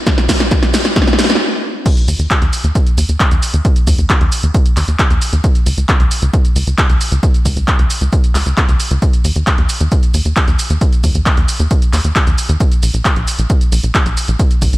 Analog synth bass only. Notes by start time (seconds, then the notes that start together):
2.08 D#2
2.19 D#2
2.42 D#2
2.64 D#2
2.98 D#2
3.09 D#2
3.31 D#2
3.54 D#2
3.87 D#2
3.99 D#2
4.21 D#2
4.43 D#2
4.77 D#2
4.88 D#2
5.10 D#2
5.33 D#2
5.66 C#2
5.77 C#2
6.00 C#2
6.22 C#2
6.56 C#2
6.67 C#2
6.89 C#2
7.12 C#2
7.45 C#2
7.57 C#2
7.79 C#2
8.01 C#2
8.35 C#2
8.46 C#2
8.69 C#2
8.91 C#2
9.25 D#2
9.36 D#2
9.58 D#2
9.81 D#2
10.14 D#2
10.25 D#2
10.48 D#2
10.70 D#2
11.04 D#2
11.15 D#2
11.37 D#2
11.60 D#2
11.93 D#2
12.04 D#2
12.27 D#2
12.49 D#2
12.83 A#1
12.94 A#1
13.16 A#1
13.39 A#1
13.72 A#1
13.83 A#1
14.06 A#1
14.28 A#1
14.62 A#1
14.73 A#1